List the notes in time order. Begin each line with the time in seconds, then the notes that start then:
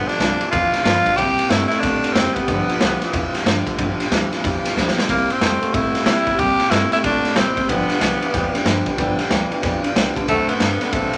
Already playing: G2 D3
0.08 F3 B3 D4 F4 G4, muted upright bass stroke, snare, ride
0.18 C2 G2 D3 E3 F3 B3 F4 G4, snare, ride
0.40 G2 E3 F3 B3 F4 G4, ride
0.51 E2 G2 E3 F3 B3 F4, kick, snare, ride
0.72 F3 B3 F4 G4, muted upright bass stroke, snare, ride
0.84 G2 D3 F3 B3 F4 G4, snare, ride
1.05 G2 D3 F3 B3 F4 G4, kick, ride
1.16 C2 C3 G3 A#3 E4 G4, kick, ride
1.37 A#3 E4 G4, muted upright bass stroke, ride
1.49 G2 C3 G3 A3 A#3 E4 G4, snare, ride
1.68 C3 A3 E4, snare, ride
1.80 A#2 C3 G3 A3 A#3 D4 E4, kick, snare, ride
1.84 G4
2.03 A#3 E4 G4, ride
2.13 F1 C3 G3 A#3 C4 E4 G4, snare, ride
2.34 C3 G3 B3 E4 G4, kick, ride
2.38 A#3
2.48 G1 G2 D3 F3 B3 F4 G4, kick, ride
2.68 F3 B3 F4 G4, muted upright bass stroke, ride
2.81 C2 G2 D3 E3 F3 B3 F4 G4, snare, ride
3.01 G2 E3 F3 B3 F4 G4, snare, ride
3.13 E2 G2 E3 F3 B3 F4 G4, kick, ride
3.34 F3 B3 F4 G4, muted upright bass stroke, snare, ride
3.45 G2 D3 F3 B3 F4 G4, snare, ride
3.66 G2 D3 F3 B3 F4 G4, kick, ride
3.77 G1 G2 D3 F3 B3 F4 G4, kick, ride
3.98 F3 B3 F4 G4, muted upright bass stroke, snare, ride
4.10 D2 G2 D3 E3 F3 B3 F4 G4, snare, ride
4.32 G2 E3 F3 B3 F4 G4, muted upright bass stroke, snare, ride
4.44 F2 G2 E3 F3 B3 F4 G4, kick, snare, ride
4.64 F3 B3 F4 G4, snare, ride
4.76 D2 G2 D3 F3 B3 F4 G4, snare
4.88 snare
4.97 G2 D3 F3 B3 F4 G4, muted upright bass stroke, snare
5.08 C2 C3 G3 A#3 E4 G4, kick, ride
5.29 A#3 C4 E4 G4, muted upright bass stroke, ride
5.41 F2 C3 G3 A3 A#3 E4 G4, snare, ride
5.61 C3 A3 A#3 E4 G4, ride
5.73 A2 C3 G3 A3 A#3 E4 G4, kick, ride
5.94 A#3 E4 G4, snare, ride
6.06 C3 G3 A#3 E4 G4, snare, ride
6.26 C3 G3 A#3 E4 G4, muted upright bass stroke, kick, ride
6.37 C2 C3 G3 A#3 E4 G4, kick, ride
6.58 A#3 E4 G4, muted upright bass stroke, snare, ride
6.70 G2 C3 G3 A3 A#3 E4 G4, snare, ride
6.90 C3 A3 A#3 E4 G4, muted upright bass stroke, snare, ride
7.03 A#2 C3 G3 A3 A#3 D4 E4 G4, kick, snare, ride
7.23 A#3 E4 G4, muted upright bass stroke, snare, ride
7.35 A1 C3 G3 A#3 C4 E4 G4, snare, ride
7.55 C3 G3 A#3 E4 G4, muted upright bass stroke, kick, ride
7.68 G1 G2 D3 F3 B3 D4 G4 B4 D5 G5, kick, ride
7.88 F3 D4 G4 B4 D5 G5, snare, ride
8.00 C2 G2 D3 E3 F3 B3 D4 G4 B4 D5 G5, snare, ride
8.20 G2 E3 F3 B3 D4 G4 B4 D5 E5, ride
8.32 E2 G2 E3 F3 B3 D4 G4 B4 D5 G5, kick, snare, ride
8.53 F3 B3 D4 G4 B4 D5 G5, snare, ride
8.65 G2 D3 F3 B3 D4 G4 B4 D5 G5, snare, ride
8.86 G2 D3 F3 B3 D4 G4 B4 D5 G5, kick, ride
8.97 G1 G2 D3 F3 B3 D4 G4 B4 D5 G5, kick, ride
9.18 F3 B3 D4 G4 B4 D5 G5, muted upright bass stroke, snare, ride
9.30 D2 G2 D3 E3 F3 B3 D4 G4 B4 D5 G5, snare, ride
9.50 G2 E3 F3 B3 D4 G4 B4 D5 G5, muted upright bass stroke, ride
9.61 F2 G2 E3 F3 B3 D4 G4 B4 D5 G5, kick, snare, ride
9.83 F3 B3 D4 G4 B4 D5 F5, ride
9.94 C2 G2 D3 F3 B3 D4 G4 B4 D5 G5, snare, ride
10.15 G2 D3 F3 B3 D4 G4 B4 D5 A5, muted upright bass stroke, kick, ride
10.27 D2 D3 F#3 A3 C4 D4 A4 D5 F#5, kick, ride
10.48 B3 C4 D4 A4 F#5, muted upright bass stroke, ride
10.59 G2 D3 F#3 B3 C4 D4 A4 D5, snare, ride
10.80 D3 B3 C4 D4 A4 D5 F#5, snare, ride
10.92 B2 D3 F#3 A3 B3 C4 D4 A4 D5 F#5, kick, ride
11.13 A4 D5 E5, muted upright bass stroke, ride